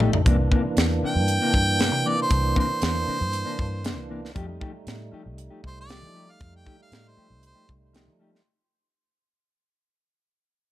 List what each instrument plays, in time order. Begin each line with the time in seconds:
Already playing: fingered electric bass A#1, tonewheel organ G3 A3 D#4
0.00 clean electric guitar F3 A3 D#4 G4, mid tom
0.13 muted clean electric guitar stroke, floor tom
0.25 fingered electric bass C2, clean electric guitar C3 E3 A#3 D4, tonewheel organ E3 A#3 D4, kick, closed hi-hat
0.39 muted clean electric guitar stroke
0.51 clean electric guitar C3 E3 A#3 D4, kick
0.65 muted clean electric guitar stroke
0.77 fingered electric bass E2, snare, closed hi-hat
0.91 muted clean electric guitar stroke
1.02 clean electric guitar C3 E3 A#3 D4, harmonica G5, muted fingered electric bass stroke
1.15 fingered electric bass G2, muted clean electric guitar stroke
1.28 muted clean electric guitar stroke, closed hi-hat
1.42 clean electric guitar C3 E3 A#3 D4
1.54 fingered electric bass G2, muted clean electric guitar stroke, kick
1.79 clean electric guitar C3 E3 A#3 D4, snare, closed hi-hat
1.92 fingered electric bass C3, muted clean electric guitar stroke
2.05 clean electric guitar C3 E3 A#3 D4, harmonica D5
2.22 harmonica C5
2.30 fingered electric bass C2, kick, closed hi-hat
2.43 muted clean electric guitar stroke
2.55 clean electric guitar C3 E3 A#3 D4, kick
2.60 harmonica C5
2.69 muted clean electric guitar stroke
2.82 fingered electric bass E2, snare, closed hi-hat
2.95 muted clean electric guitar stroke
3.07 clean electric guitar C3 E3 A#3 D4, muted fingered electric bass stroke
3.21 fingered electric bass G2, muted clean electric guitar stroke
3.33 muted clean electric guitar stroke, closed hi-hat
3.45 clean electric guitar C3 E3 A#3 D4
3.59 fingered electric bass G2, kick
3.84 clean electric guitar C3 E3 A#3 D4, snare, closed hi-hat
3.97 fingered electric bass C2, muted clean electric guitar stroke
4.09 clean electric guitar C3 E3 A#3 D4
4.23 muted clean electric guitar stroke, snare
4.35 fingered electric bass F2, clean electric guitar F3 A3 D#4 G4, tonewheel organ G3 A3 D#4, kick, closed hi-hat
4.48 muted clean electric guitar stroke
4.60 clean electric guitar F3 A3 D#4 G4, kick
4.74 muted clean electric guitar stroke
4.87 fingered electric bass A2, snare, closed hi-hat
4.99 muted clean electric guitar stroke
5.12 clean electric guitar F3 A3 D#4 G4, muted fingered electric bass stroke
5.25 fingered electric bass C2, muted clean electric guitar stroke
5.38 muted clean electric guitar stroke, closed hi-hat
5.50 clean electric guitar F3 A3 D#4 G4
5.64 fingered electric bass C2, harmonica C5, kick
5.80 harmonica D5
5.88 clean electric guitar F3 A3 D#4 G4, snare, closed hi-hat
6.02 fingered electric bass F3, muted clean electric guitar stroke
6.14 clean electric guitar F3 A3 D#4 G4
6.28 muted clean electric guitar stroke
6.32 harmonica F5
6.41 fingered electric bass F2, kick, closed hi-hat
6.53 harmonica G5, muted clean electric guitar stroke
6.65 clean electric guitar F3 A3 D#4 G4, kick
6.78 harmonica F5, muted clean electric guitar stroke
6.92 fingered electric bass A2, snare, closed hi-hat
7.04 muted clean electric guitar stroke
7.08 harmonica C5
7.16 clean electric guitar F3 A3 D#4 G4, muted fingered electric bass stroke
7.29 fingered electric bass C2, muted clean electric guitar stroke
7.42 muted clean electric guitar stroke, closed hi-hat
7.46 harmonica C5
7.55 clean electric guitar F3 A3 D#4 G4
7.69 fingered electric bass C2, muted clean electric guitar stroke, kick
7.93 clean electric guitar F3 A3 D#4 G4, snare, closed hi-hat
8.07 fingered electric bass F3, muted clean electric guitar stroke
8.19 clean electric guitar F3 A3 D#4 G4
8.33 muted clean electric guitar stroke, snare